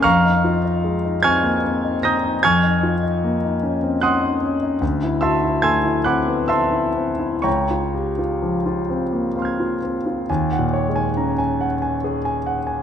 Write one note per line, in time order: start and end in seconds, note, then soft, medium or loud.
0.03 2.38 F2 soft
0.03 1.19 F5 medium
0.03 1.19 A#5 medium
0.03 1.19 C#6 medium
0.03 1.22 F6 medium
0.25 0.56 D#4 soft
0.44 0.64 F4 soft
0.65 0.96 D#4 soft
0.84 1.15 G#3 soft
1.05 1.36 D#4 soft
1.23 1.55 C4 soft
1.23 1.99 G#5 medium
1.23 1.99 C#6 medium
1.23 1.99 F6 medium
1.23 2.02 G#6 medium
1.43 1.63 A#3 soft
1.64 1.95 C4 soft
1.84 2.15 D#4 soft
2.03 2.35 C4 soft
2.03 2.41 A#5 medium
2.03 2.40 D#6 medium
2.03 2.41 G6 medium
2.03 2.42 A#6 medium
2.24 2.43 D#4 soft
2.43 4.80 F2 soft
2.43 3.99 G#5 medium
2.43 4.00 C#6 medium
2.43 4.00 F6 medium
2.43 4.03 G#6 medium
2.63 2.94 D#4 soft
2.83 3.02 F4 soft
3.03 3.34 D#4 soft
3.24 3.55 A#3 soft
3.44 3.75 D#4 soft
3.63 3.95 C#4 soft
3.83 4.03 C4 soft
4.01 4.34 C#4 soft
4.01 4.78 F#5 medium
4.01 4.78 C6 medium
4.01 4.78 D#6 medium
4.01 4.82 F#6 medium
4.22 4.54 D#4 soft
4.42 4.74 C#4 soft
4.62 4.82 D#4 soft
4.81 7.41 D2 soft
5.03 5.36 E4 soft
5.21 5.43 F#4 soft
5.21 5.61 E5 medium
5.21 5.61 A5 soft
5.21 5.61 C6 soft
5.21 5.62 E6 medium
5.43 5.77 E4 soft
5.62 5.98 A3 soft
5.62 6.03 G#5 medium
5.62 6.03 C6 medium
5.62 6.04 E6 medium
5.62 6.06 G#6 medium
5.84 6.19 E4 soft
6.04 6.41 C4 soft
6.04 6.47 F#5 medium
6.04 6.47 B5 soft
6.04 6.47 D6 soft
6.04 6.50 F#6 medium
6.27 6.50 B3 soft
6.48 6.87 C4 soft
6.48 7.41 E5 medium
6.48 7.41 A5 medium
6.48 7.41 C6 medium
6.48 7.44 E6 medium
6.72 7.11 E4 soft
6.97 7.36 C4 soft
7.20 7.45 E4 soft
7.42 10.24 C#2 soft
7.42 9.77 C#5 soft
7.42 9.78 G5 soft
7.42 9.77 A#5 soft
7.42 9.81 C#6 medium
7.71 8.09 F4 soft
7.95 8.19 G4 soft
8.19 8.56 F4 soft
8.42 8.79 F3 soft
8.66 9.03 F4 soft
8.90 9.26 C4 soft
9.12 9.35 A#3 soft
9.36 9.73 C4 soft
9.36 10.25 F5 soft
9.36 10.26 C6 soft
9.42 10.28 F6 soft
9.42 10.30 G#6 soft
9.60 9.97 F4 soft
9.83 10.20 C4 soft
10.06 10.29 F4 soft
10.30 12.83 D#2 soft
10.30 10.65 G#5 soft
10.52 10.87 F#5 soft
10.59 11.06 A#2 soft
10.74 11.09 C#5 soft
10.89 11.35 G#3 soft
10.96 11.31 G#5 soft
11.17 11.64 C#4 soft
11.17 11.39 A#5 soft
11.38 11.74 G#5 soft
11.61 11.96 F#5 soft
11.82 12.17 G#5 soft
12.04 12.38 G#4 soft
12.25 12.59 G#5 soft
12.47 12.80 F#5 soft
12.67 12.83 G#5 soft